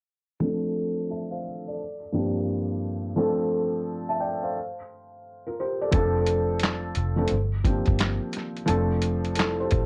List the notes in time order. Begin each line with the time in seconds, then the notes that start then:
0.40 F3 A3 C4 D4 A4
1.10 E5 A5
1.31 C5 F5
1.68 A4 D5
2.12 G2 F3 A#3 C4 D4 G4
3.16 F3 A3 C4 D4 A4
4.09 E5 A5
4.20 D5 G5
4.43 C5 F5
5.47 F4 A#4
5.60 G4 C5
5.82 A4 D5
5.91 F1 F3 A3 C4 D4 A4, kick, closed hi-hat
6.27 closed hi-hat
6.60 closed hi-hat
6.64 snare, clap
6.95 F1, closed hi-hat
7.16 F3 A3 C4 D4 A4
7.28 G1, closed hi-hat
7.64 F3 A#3 C4 D4 G4, kick, closed hi-hat
7.86 G1, kick, closed hi-hat
7.99 snare, clap, closed hi-hat
8.33 snare, closed hi-hat
8.57 closed hi-hat
8.66 F1 F3 A3 C4 D4 A4, closed hi-hat
9.02 closed hi-hat
9.25 closed hi-hat
9.35 E4 A4, closed hi-hat
9.40 snare, clap
9.60 G4 C5
9.71 A1, kick, closed hi-hat